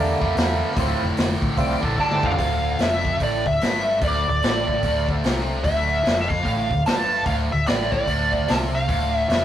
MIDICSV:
0, 0, Header, 1, 6, 480
1, 0, Start_track
1, 0, Key_signature, -1, "minor"
1, 0, Tempo, 405954
1, 913, Time_signature, 4, 2, 24, 8
1, 11170, End_track
2, 0, Start_track
2, 0, Title_t, "Lead electric guitar"
2, 0, Program_c, 0, 29
2, 2368, Note_on_c, 0, 81, 107
2, 2666, Note_off_c, 0, 81, 0
2, 2670, Note_on_c, 0, 77, 108
2, 3319, Note_off_c, 0, 77, 0
2, 3324, Note_on_c, 0, 76, 78
2, 3807, Note_off_c, 0, 76, 0
2, 3821, Note_on_c, 0, 74, 73
2, 4095, Note_off_c, 0, 74, 0
2, 4100, Note_on_c, 0, 76, 80
2, 4704, Note_off_c, 0, 76, 0
2, 4774, Note_on_c, 0, 74, 85
2, 5040, Note_off_c, 0, 74, 0
2, 5078, Note_on_c, 0, 74, 72
2, 5974, Note_off_c, 0, 74, 0
2, 6671, Note_on_c, 0, 76, 91
2, 7299, Note_off_c, 0, 76, 0
2, 7343, Note_on_c, 0, 76, 68
2, 7433, Note_off_c, 0, 76, 0
2, 7437, Note_on_c, 0, 77, 93
2, 8056, Note_off_c, 0, 77, 0
2, 8115, Note_on_c, 0, 81, 90
2, 8559, Note_off_c, 0, 81, 0
2, 8593, Note_on_c, 0, 77, 92
2, 8674, Note_off_c, 0, 77, 0
2, 8895, Note_on_c, 0, 76, 89
2, 9069, Note_off_c, 0, 76, 0
2, 9074, Note_on_c, 0, 74, 84
2, 9355, Note_off_c, 0, 74, 0
2, 9369, Note_on_c, 0, 74, 80
2, 10044, Note_on_c, 0, 81, 86
2, 10051, Note_off_c, 0, 74, 0
2, 10124, Note_off_c, 0, 81, 0
2, 10344, Note_on_c, 0, 77, 91
2, 10829, Note_off_c, 0, 77, 0
2, 10829, Note_on_c, 0, 76, 91
2, 10980, Note_off_c, 0, 76, 0
2, 10985, Note_on_c, 0, 76, 87
2, 11170, Note_off_c, 0, 76, 0
2, 11170, End_track
3, 0, Start_track
3, 0, Title_t, "Tonewheel organ"
3, 0, Program_c, 1, 16
3, 0, Note_on_c, 1, 57, 56
3, 0, Note_on_c, 1, 58, 54
3, 0, Note_on_c, 1, 62, 109
3, 252, Note_off_c, 1, 62, 0
3, 856, Note_off_c, 1, 57, 0
3, 860, Note_off_c, 1, 58, 0
3, 911, Note_on_c, 1, 53, 57
3, 912, Note_on_c, 1, 60, 55
3, 922, Note_on_c, 1, 64, 67
3, 1264, Note_off_c, 1, 53, 0
3, 1265, Note_off_c, 1, 60, 0
3, 1270, Note_off_c, 1, 64, 0
3, 1857, Note_on_c, 1, 64, 56
3, 1858, Note_on_c, 1, 53, 51
3, 1860, Note_on_c, 1, 60, 51
3, 1890, Note_on_c, 1, 74, 96
3, 2132, Note_off_c, 1, 64, 0
3, 2133, Note_off_c, 1, 53, 0
3, 2134, Note_off_c, 1, 60, 0
3, 2171, Note_off_c, 1, 74, 0
3, 2188, Note_on_c, 1, 69, 91
3, 2351, Note_off_c, 1, 69, 0
3, 2377, Note_on_c, 1, 74, 93
3, 2475, Note_on_c, 1, 55, 57
3, 2505, Note_on_c, 1, 57, 59
3, 2544, Note_on_c, 1, 59, 60
3, 2563, Note_on_c, 1, 60, 56
3, 2600, Note_on_c, 1, 62, 61
3, 2642, Note_on_c, 1, 64, 61
3, 2654, Note_off_c, 1, 74, 0
3, 2666, Note_on_c, 1, 65, 62
3, 2688, Note_on_c, 1, 74, 106
3, 2700, Note_on_c, 1, 67, 64
3, 2722, Note_off_c, 1, 55, 0
3, 2731, Note_on_c, 1, 69, 63
3, 2737, Note_off_c, 1, 57, 0
3, 2757, Note_off_c, 1, 59, 0
3, 2763, Note_on_c, 1, 71, 61
3, 2766, Note_off_c, 1, 60, 0
3, 2784, Note_off_c, 1, 62, 0
3, 2796, Note_on_c, 1, 72, 62
3, 2806, Note_off_c, 1, 64, 0
3, 2814, Note_off_c, 1, 65, 0
3, 2820, Note_off_c, 1, 69, 0
3, 2828, Note_on_c, 1, 65, 65
3, 2829, Note_on_c, 1, 57, 66
3, 2834, Note_off_c, 1, 67, 0
3, 2835, Note_on_c, 1, 69, 66
3, 2840, Note_off_c, 1, 74, 0
3, 2841, Note_on_c, 1, 62, 66
3, 2866, Note_off_c, 1, 71, 0
3, 2883, Note_off_c, 1, 72, 0
3, 6628, Note_off_c, 1, 57, 0
3, 6628, Note_off_c, 1, 65, 0
3, 6631, Note_off_c, 1, 69, 0
3, 6634, Note_off_c, 1, 62, 0
3, 6656, Note_on_c, 1, 58, 67
3, 6657, Note_on_c, 1, 63, 62
3, 6660, Note_on_c, 1, 66, 64
3, 6816, Note_on_c, 1, 62, 68
3, 6820, Note_on_c, 1, 57, 68
3, 6821, Note_off_c, 1, 63, 0
3, 6821, Note_on_c, 1, 65, 67
3, 6822, Note_off_c, 1, 66, 0
3, 6823, Note_off_c, 1, 58, 0
3, 10473, Note_off_c, 1, 62, 0
3, 10475, Note_off_c, 1, 57, 0
3, 10475, Note_off_c, 1, 65, 0
3, 10492, Note_on_c, 1, 57, 68
3, 10501, Note_on_c, 1, 62, 68
3, 10508, Note_on_c, 1, 65, 67
3, 11170, Note_off_c, 1, 57, 0
3, 11170, Note_off_c, 1, 62, 0
3, 11170, Note_off_c, 1, 65, 0
3, 11170, End_track
4, 0, Start_track
4, 0, Title_t, "Distorted electric guitar"
4, 0, Program_c, 2, 30
4, 0, Note_on_c, 2, 43, 85
4, 0, Note_on_c, 2, 50, 89
4, 0, Note_on_c, 2, 55, 104
4, 228, Note_off_c, 2, 43, 0
4, 228, Note_off_c, 2, 55, 0
4, 238, Note_off_c, 2, 50, 0
4, 242, Note_on_c, 2, 55, 97
4, 267, Note_on_c, 2, 50, 79
4, 285, Note_on_c, 2, 43, 73
4, 403, Note_off_c, 2, 43, 0
4, 417, Note_off_c, 2, 55, 0
4, 417, Note_on_c, 2, 43, 81
4, 425, Note_off_c, 2, 50, 0
4, 439, Note_on_c, 2, 50, 80
4, 455, Note_on_c, 2, 55, 90
4, 890, Note_off_c, 2, 43, 0
4, 894, Note_on_c, 2, 38, 96
4, 904, Note_off_c, 2, 50, 0
4, 912, Note_off_c, 2, 55, 0
4, 914, Note_on_c, 2, 45, 96
4, 932, Note_on_c, 2, 50, 113
4, 2137, Note_off_c, 2, 50, 0
4, 2141, Note_off_c, 2, 38, 0
4, 2151, Note_off_c, 2, 45, 0
4, 2151, Note_on_c, 2, 50, 92
4, 2167, Note_on_c, 2, 45, 89
4, 2187, Note_on_c, 2, 38, 78
4, 2321, Note_off_c, 2, 38, 0
4, 2327, Note_off_c, 2, 50, 0
4, 2335, Note_off_c, 2, 45, 0
4, 2335, Note_on_c, 2, 38, 87
4, 2351, Note_on_c, 2, 45, 83
4, 2369, Note_on_c, 2, 50, 92
4, 2808, Note_off_c, 2, 38, 0
4, 2816, Note_off_c, 2, 45, 0
4, 2822, Note_on_c, 2, 38, 101
4, 2825, Note_off_c, 2, 50, 0
4, 3297, Note_off_c, 2, 38, 0
4, 3303, Note_on_c, 2, 41, 100
4, 3777, Note_off_c, 2, 41, 0
4, 3788, Note_on_c, 2, 45, 103
4, 4078, Note_off_c, 2, 45, 0
4, 4090, Note_on_c, 2, 38, 74
4, 4230, Note_off_c, 2, 38, 0
4, 4276, Note_on_c, 2, 43, 100
4, 4740, Note_off_c, 2, 43, 0
4, 4745, Note_on_c, 2, 38, 97
4, 5036, Note_off_c, 2, 38, 0
4, 5061, Note_on_c, 2, 38, 68
4, 5195, Note_off_c, 2, 38, 0
4, 5243, Note_on_c, 2, 45, 106
4, 5708, Note_off_c, 2, 45, 0
4, 5724, Note_on_c, 2, 38, 110
4, 6201, Note_off_c, 2, 38, 0
4, 6201, Note_on_c, 2, 48, 96
4, 6667, Note_off_c, 2, 48, 0
4, 6677, Note_on_c, 2, 38, 104
4, 7139, Note_off_c, 2, 38, 0
4, 7143, Note_on_c, 2, 41, 100
4, 7613, Note_off_c, 2, 41, 0
4, 7617, Note_on_c, 2, 45, 115
4, 7915, Note_off_c, 2, 45, 0
4, 7934, Note_on_c, 2, 38, 70
4, 8074, Note_off_c, 2, 38, 0
4, 8118, Note_on_c, 2, 43, 96
4, 8586, Note_off_c, 2, 43, 0
4, 8590, Note_on_c, 2, 38, 105
4, 8883, Note_off_c, 2, 38, 0
4, 8895, Note_on_c, 2, 38, 64
4, 9069, Note_off_c, 2, 38, 0
4, 9069, Note_on_c, 2, 45, 93
4, 9545, Note_off_c, 2, 45, 0
4, 9550, Note_on_c, 2, 38, 107
4, 10025, Note_off_c, 2, 38, 0
4, 10030, Note_on_c, 2, 48, 85
4, 10496, Note_off_c, 2, 48, 0
4, 10501, Note_on_c, 2, 38, 98
4, 10979, Note_off_c, 2, 38, 0
4, 10983, Note_on_c, 2, 41, 96
4, 11170, Note_off_c, 2, 41, 0
4, 11170, End_track
5, 0, Start_track
5, 0, Title_t, "Fingered electric bass"
5, 0, Program_c, 3, 33
5, 0, Note_on_c, 3, 40, 97
5, 143, Note_off_c, 3, 40, 0
5, 261, Note_on_c, 3, 41, 92
5, 370, Note_off_c, 3, 41, 0
5, 420, Note_on_c, 3, 40, 93
5, 721, Note_off_c, 3, 40, 0
5, 904, Note_on_c, 3, 26, 94
5, 1093, Note_off_c, 3, 26, 0
5, 1203, Note_on_c, 3, 29, 95
5, 1316, Note_off_c, 3, 29, 0
5, 1379, Note_on_c, 3, 29, 94
5, 1569, Note_off_c, 3, 29, 0
5, 1684, Note_on_c, 3, 33, 93
5, 1796, Note_off_c, 3, 33, 0
5, 1862, Note_on_c, 3, 36, 88
5, 2050, Note_off_c, 3, 36, 0
5, 2156, Note_on_c, 3, 34, 88
5, 2270, Note_off_c, 3, 34, 0
5, 2343, Note_on_c, 3, 31, 96
5, 2531, Note_off_c, 3, 31, 0
5, 2641, Note_on_c, 3, 29, 101
5, 2753, Note_off_c, 3, 29, 0
5, 2817, Note_on_c, 3, 26, 86
5, 3266, Note_off_c, 3, 26, 0
5, 3303, Note_on_c, 3, 29, 88
5, 3749, Note_off_c, 3, 29, 0
5, 3786, Note_on_c, 3, 33, 76
5, 4065, Note_off_c, 3, 33, 0
5, 4086, Note_on_c, 3, 26, 74
5, 4251, Note_off_c, 3, 26, 0
5, 4280, Note_on_c, 3, 31, 89
5, 4718, Note_off_c, 3, 31, 0
5, 4753, Note_on_c, 3, 26, 86
5, 5029, Note_off_c, 3, 26, 0
5, 5058, Note_on_c, 3, 26, 78
5, 5217, Note_off_c, 3, 26, 0
5, 5230, Note_on_c, 3, 33, 84
5, 5673, Note_off_c, 3, 33, 0
5, 5709, Note_on_c, 3, 26, 83
5, 6153, Note_off_c, 3, 26, 0
5, 6194, Note_on_c, 3, 36, 91
5, 6636, Note_off_c, 3, 36, 0
5, 6674, Note_on_c, 3, 26, 93
5, 7117, Note_off_c, 3, 26, 0
5, 7159, Note_on_c, 3, 29, 89
5, 7600, Note_off_c, 3, 29, 0
5, 7632, Note_on_c, 3, 33, 82
5, 7910, Note_off_c, 3, 33, 0
5, 7930, Note_on_c, 3, 26, 76
5, 8095, Note_off_c, 3, 26, 0
5, 8116, Note_on_c, 3, 31, 85
5, 8560, Note_off_c, 3, 31, 0
5, 8582, Note_on_c, 3, 26, 85
5, 8866, Note_off_c, 3, 26, 0
5, 8899, Note_on_c, 3, 26, 77
5, 9061, Note_off_c, 3, 26, 0
5, 9081, Note_on_c, 3, 33, 87
5, 9524, Note_off_c, 3, 33, 0
5, 9544, Note_on_c, 3, 26, 76
5, 9995, Note_off_c, 3, 26, 0
5, 10034, Note_on_c, 3, 36, 87
5, 10481, Note_off_c, 3, 36, 0
5, 10512, Note_on_c, 3, 26, 87
5, 10961, Note_off_c, 3, 26, 0
5, 10990, Note_on_c, 3, 29, 84
5, 11170, Note_off_c, 3, 29, 0
5, 11170, End_track
6, 0, Start_track
6, 0, Title_t, "Drums"
6, 254, Note_on_c, 9, 36, 84
6, 372, Note_off_c, 9, 36, 0
6, 434, Note_on_c, 9, 46, 56
6, 454, Note_on_c, 9, 38, 122
6, 553, Note_off_c, 9, 46, 0
6, 573, Note_off_c, 9, 38, 0
6, 845, Note_on_c, 9, 38, 34
6, 907, Note_on_c, 9, 36, 120
6, 909, Note_on_c, 9, 46, 58
6, 963, Note_off_c, 9, 38, 0
6, 1025, Note_off_c, 9, 36, 0
6, 1027, Note_off_c, 9, 46, 0
6, 1382, Note_on_c, 9, 46, 59
6, 1402, Note_on_c, 9, 38, 105
6, 1500, Note_off_c, 9, 46, 0
6, 1520, Note_off_c, 9, 38, 0
6, 1682, Note_on_c, 9, 36, 97
6, 1800, Note_off_c, 9, 36, 0
6, 1859, Note_on_c, 9, 36, 86
6, 1860, Note_on_c, 9, 46, 64
6, 1978, Note_off_c, 9, 36, 0
6, 1978, Note_off_c, 9, 46, 0
6, 2161, Note_on_c, 9, 36, 86
6, 2279, Note_off_c, 9, 36, 0
6, 2340, Note_on_c, 9, 36, 65
6, 2458, Note_off_c, 9, 36, 0
6, 2496, Note_on_c, 9, 47, 67
6, 2614, Note_off_c, 9, 47, 0
6, 2641, Note_on_c, 9, 36, 92
6, 2735, Note_on_c, 9, 43, 98
6, 2759, Note_off_c, 9, 36, 0
6, 2821, Note_on_c, 9, 36, 97
6, 2824, Note_on_c, 9, 46, 49
6, 2853, Note_off_c, 9, 43, 0
6, 2939, Note_off_c, 9, 36, 0
6, 2942, Note_off_c, 9, 46, 0
6, 3296, Note_on_c, 9, 46, 48
6, 3316, Note_on_c, 9, 38, 101
6, 3414, Note_off_c, 9, 46, 0
6, 3434, Note_off_c, 9, 38, 0
6, 3605, Note_on_c, 9, 36, 87
6, 3723, Note_off_c, 9, 36, 0
6, 3783, Note_on_c, 9, 46, 50
6, 3785, Note_on_c, 9, 36, 71
6, 3901, Note_off_c, 9, 46, 0
6, 3903, Note_off_c, 9, 36, 0
6, 4089, Note_on_c, 9, 36, 79
6, 4207, Note_off_c, 9, 36, 0
6, 4272, Note_on_c, 9, 46, 56
6, 4292, Note_on_c, 9, 38, 99
6, 4390, Note_off_c, 9, 46, 0
6, 4411, Note_off_c, 9, 38, 0
6, 4744, Note_on_c, 9, 46, 55
6, 4749, Note_on_c, 9, 36, 102
6, 4863, Note_off_c, 9, 46, 0
6, 4867, Note_off_c, 9, 36, 0
6, 5231, Note_on_c, 9, 46, 52
6, 5252, Note_on_c, 9, 38, 103
6, 5350, Note_off_c, 9, 46, 0
6, 5370, Note_off_c, 9, 38, 0
6, 5532, Note_on_c, 9, 36, 85
6, 5650, Note_off_c, 9, 36, 0
6, 5707, Note_on_c, 9, 46, 50
6, 5711, Note_on_c, 9, 36, 78
6, 5825, Note_off_c, 9, 46, 0
6, 5829, Note_off_c, 9, 36, 0
6, 6013, Note_on_c, 9, 36, 80
6, 6132, Note_off_c, 9, 36, 0
6, 6194, Note_on_c, 9, 46, 55
6, 6214, Note_on_c, 9, 38, 111
6, 6312, Note_off_c, 9, 46, 0
6, 6333, Note_off_c, 9, 38, 0
6, 6370, Note_on_c, 9, 38, 31
6, 6488, Note_off_c, 9, 38, 0
6, 6671, Note_on_c, 9, 36, 99
6, 6675, Note_on_c, 9, 46, 49
6, 6789, Note_off_c, 9, 36, 0
6, 6793, Note_off_c, 9, 46, 0
6, 7156, Note_on_c, 9, 46, 52
6, 7176, Note_on_c, 9, 38, 104
6, 7275, Note_off_c, 9, 46, 0
6, 7295, Note_off_c, 9, 38, 0
6, 7451, Note_on_c, 9, 36, 83
6, 7570, Note_off_c, 9, 36, 0
6, 7628, Note_on_c, 9, 36, 72
6, 7631, Note_on_c, 9, 46, 48
6, 7746, Note_off_c, 9, 36, 0
6, 7749, Note_off_c, 9, 46, 0
6, 7930, Note_on_c, 9, 36, 79
6, 8048, Note_off_c, 9, 36, 0
6, 8108, Note_on_c, 9, 46, 53
6, 8129, Note_on_c, 9, 38, 106
6, 8227, Note_off_c, 9, 46, 0
6, 8247, Note_off_c, 9, 38, 0
6, 8579, Note_on_c, 9, 46, 49
6, 8584, Note_on_c, 9, 36, 101
6, 8697, Note_off_c, 9, 46, 0
6, 8702, Note_off_c, 9, 36, 0
6, 9063, Note_on_c, 9, 46, 50
6, 9083, Note_on_c, 9, 38, 106
6, 9181, Note_off_c, 9, 46, 0
6, 9201, Note_off_c, 9, 38, 0
6, 9367, Note_on_c, 9, 36, 86
6, 9486, Note_off_c, 9, 36, 0
6, 9547, Note_on_c, 9, 36, 73
6, 9549, Note_on_c, 9, 46, 50
6, 9665, Note_off_c, 9, 36, 0
6, 9667, Note_off_c, 9, 46, 0
6, 9850, Note_on_c, 9, 36, 75
6, 9969, Note_off_c, 9, 36, 0
6, 10029, Note_on_c, 9, 46, 58
6, 10049, Note_on_c, 9, 38, 102
6, 10147, Note_off_c, 9, 46, 0
6, 10167, Note_off_c, 9, 38, 0
6, 10508, Note_on_c, 9, 46, 55
6, 10510, Note_on_c, 9, 36, 100
6, 10626, Note_off_c, 9, 46, 0
6, 10628, Note_off_c, 9, 36, 0
6, 10993, Note_on_c, 9, 46, 52
6, 11013, Note_on_c, 9, 38, 106
6, 11111, Note_off_c, 9, 46, 0
6, 11131, Note_off_c, 9, 38, 0
6, 11170, End_track
0, 0, End_of_file